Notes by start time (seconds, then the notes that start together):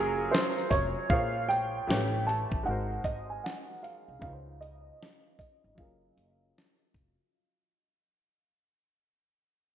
Already playing: F#1 F#3 C#4 F4 G#4 A#4
0.31 C5, snare, shaker
0.58 shaker
0.70 F1 C#5, kick, closed hi-hat, shaker
1.10 A#1 A#3 F4 G#4 C5 C#5 F5, kick
1.48 G5, closed hi-hat
1.87 A1 A3 E4 G4 B4 C#5, snare
2.27 A5, closed hi-hat
2.52 A1, kick
2.63 G#1 G#3 D#4 F#4 F#5
2.69 A#4 C5
3.04 G#1 D#5, kick, closed hi-hat
3.30 G#5
3.44 F#5, snare
3.83 F5, closed hi-hat
4.08 C2
4.19 C#2 C#3 C#4 D#4 F5, kick
4.25 F4 B4
4.33 C5
4.61 D#5, closed hi-hat
5.03 snare
5.39 D#5, kick, closed hi-hat
5.64 G#1
5.75 F#1 F#3 C#4 F4 F5, kick
5.80 G#4 A#4
6.17 F#1, closed hi-hat
6.58 snare
6.94 F1, kick, closed hi-hat